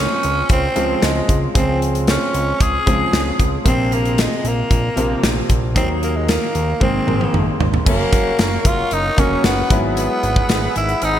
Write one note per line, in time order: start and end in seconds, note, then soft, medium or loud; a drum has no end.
0.00 0.26 C#3 medium
0.00 0.26 F3 medium
0.00 0.26 G#3 medium
0.00 0.27 C4 medium
0.00 0.51 C#4 loud
0.23 0.43 C#2 medium
0.23 closed hi-hat medium
0.49 0.69 C#2 loud
0.49 1.00 C4 loud
0.49 kick medium
0.49 closed hi-hat medium
0.75 0.95 C#2 loud
0.75 1.37 C#3 medium
0.75 1.37 F3 medium
0.75 1.38 G#3 medium
0.75 1.38 C4 medium
0.75 closed hi-hat medium
1.02 1.22 C#2 loud
1.02 1.40 G#3 medium
1.02 snare loud
1.02 closed hi-hat medium
1.29 1.48 C#2 medium
1.29 kick medium
1.29 closed hi-hat medium
1.54 2.18 C#2 loud
1.54 2.37 C#3 medium
1.54 2.37 F3 medium
1.54 2.37 G#3 medium
1.54 2.37 C4 medium
1.54 1.80 C4 medium
1.54 kick loud
1.54 closed hi-hat medium
1.82 closed hi-hat medium
1.95 closed hi-hat medium
2.07 2.63 C#4 medium
2.07 snare loud
2.07 closed hi-hat medium
2.34 2.53 C#2 loud
2.34 closed hi-hat medium
2.60 2.79 C#2 medium
2.60 3.40 G#4 loud
2.60 kick medium
2.60 closed hi-hat medium
2.86 3.06 C#2 medium
2.86 3.48 C#3 medium
2.86 3.48 F3 medium
2.86 3.48 G#3 medium
2.86 3.49 C4 medium
2.86 kick medium
2.86 closed hi-hat medium
3.13 3.32 C#2 loud
3.13 snare loud
3.13 closed hi-hat medium
3.40 3.58 C#2 loud
3.40 kick medium
3.40 closed hi-hat medium
3.65 4.28 A#1 loud
3.65 4.47 C3 medium
3.65 4.47 F3 medium
3.65 4.47 A#3 medium
3.65 4.48 C4 medium
3.65 3.96 C4 loud
3.65 kick loud
3.65 closed hi-hat medium
3.92 4.22 A#3 medium
3.92 closed hi-hat medium
4.05 closed hi-hat medium
4.18 4.49 G#3 medium
4.18 snare loud
4.18 closed hi-hat medium
4.44 4.63 A#1 loud
4.44 5.25 A#3 medium
4.44 closed hi-hat medium
4.71 4.90 A#1 loud
4.71 kick medium
4.71 closed hi-hat medium
4.96 5.16 A#1 loud
4.96 5.58 C3 medium
4.96 5.58 F3 medium
4.96 5.59 A#3 medium
4.96 5.59 C4 medium
4.96 closed hi-hat medium
5.23 5.42 A#1 loud
5.23 snare loud
5.23 closed hi-hat medium
5.50 5.77 A#1 loud
5.50 kick medium
5.50 closed hi-hat medium
5.75 6.38 D#2 loud
5.75 6.57 D#3 medium
5.75 6.58 F#3 medium
5.75 6.58 A#3 medium
5.75 5.89 C4 loud
5.75 6.58 D#4 medium
5.75 kick loud
5.75 closed hi-hat medium
6.03 6.18 A#3 medium
6.03 closed hi-hat medium
6.16 6.31 G#3 medium
6.29 6.82 A#3 loud
6.29 snare loud
6.29 closed hi-hat medium
6.55 6.74 D#2 loud
6.55 closed hi-hat medium
6.80 7.00 G#1 loud
6.80 7.02 D#3 medium
6.80 7.02 G#3 medium
6.80 7.02 A#3 medium
6.80 7.02 C4 medium
6.80 7.57 C4 medium
6.80 kick medium
6.80 high tom medium
7.07 7.27 G#1 loud
7.07 7.69 D#3 medium
7.07 7.69 G#3 medium
7.07 7.69 A#3 medium
7.07 7.69 C4 medium
7.07 mid tom medium
7.21 mid tom medium
7.34 7.53 G#1 loud
7.34 mid tom medium
7.60 7.79 G#1 medium
7.60 floor tom medium
7.74 floor tom medium
7.85 8.05 F#1 loud
7.85 8.68 C#3 medium
7.85 8.68 F#3 medium
7.85 8.68 A#3 medium
7.85 8.68 A#3 loud
7.85 8.68 C#4 medium
7.85 9.69 A#4 medium
7.85 9.69 C#5 medium
7.85 11.20 F#5 medium
7.85 9.69 C#6 medium
7.85 kick loud
7.85 crash medium
8.13 8.32 F#1 medium
8.13 kick medium
8.13 closed hi-hat medium
8.39 8.58 F#1 loud
8.39 snare loud
8.39 closed hi-hat medium
8.65 8.84 F#1 loud
8.65 8.95 F4 loud
8.65 kick medium
8.65 closed hi-hat medium
8.91 9.11 F#1 loud
8.91 9.21 D#4 loud
8.91 closed hi-hat medium
9.17 9.37 F1 medium
9.17 9.70 C#3 medium
9.17 9.69 F#3 medium
9.17 9.71 A#3 medium
9.17 9.71 C#4 medium
9.17 9.45 C#4 loud
9.17 kick medium
9.17 closed hi-hat medium
9.44 9.63 F#1 loud
9.44 9.82 B3 medium
9.44 snare loud
9.44 closed hi-hat medium
9.70 10.09 G#1 loud
9.70 10.55 F#3 medium
9.70 10.55 G#3 medium
9.70 10.55 B3 medium
9.70 10.55 E4 medium
9.70 11.20 G#4 medium
9.70 11.20 E5 medium
9.70 11.20 B5 medium
9.70 kick loud
9.70 closed hi-hat medium
9.97 10.73 B3 loud
9.97 closed hi-hat medium
10.23 10.42 G#1 loud
10.23 closed hi-hat medium
10.36 kick loud
10.49 10.69 G#1 loud
10.49 snare loud
10.49 closed hi-hat medium
10.76 10.95 G#1 loud
10.76 11.05 E4 medium
10.76 closed hi-hat medium
10.89 closed hi-hat soft
11.02 11.20 G#1 loud
11.02 11.20 D#4 loud
11.02 closed hi-hat medium